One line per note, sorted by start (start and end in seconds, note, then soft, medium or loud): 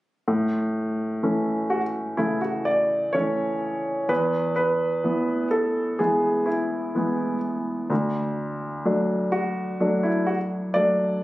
0.28 4.05 A2 soft
1.23 2.16 E3 soft
1.23 2.16 A3 soft
1.23 2.16 C#4 soft
1.70 1.81 F#4 medium
2.17 3.11 C#3 soft
2.17 3.11 E3 soft
2.17 3.11 A3 soft
2.17 2.40 E4 medium
2.41 2.67 F#4 medium
2.65 3.15 D5 medium
3.13 4.06 E3 soft
3.13 4.07 A3 soft
3.13 4.07 C#4 soft
3.13 4.12 C#5 medium
4.09 7.86 E2 soft
4.09 4.53 B4 medium
4.56 5.48 B4 medium
5.04 5.97 E3 soft
5.04 5.97 B3 soft
5.51 6.01 A4 medium
5.99 6.92 E3 soft
5.99 6.92 G#3 soft
5.99 6.92 B3 soft
5.99 6.48 G#4 medium
6.46 7.38 E4 soft
6.95 7.87 E3 soft
6.95 7.88 G#3 soft
6.95 7.88 B3 soft
7.90 11.23 D2 soft
8.85 9.78 F#3 soft
8.85 9.78 A3 soft
8.85 9.78 D4 soft
9.32 10.06 F#4 medium
9.80 10.73 F#3 soft
9.80 10.73 A3 soft
9.80 10.73 D4 soft
10.03 10.29 E4 medium
10.27 10.37 F#4 medium
10.74 11.23 F#3 soft
10.74 11.23 A3 soft
10.74 11.23 D4 soft
10.74 11.23 D5 medium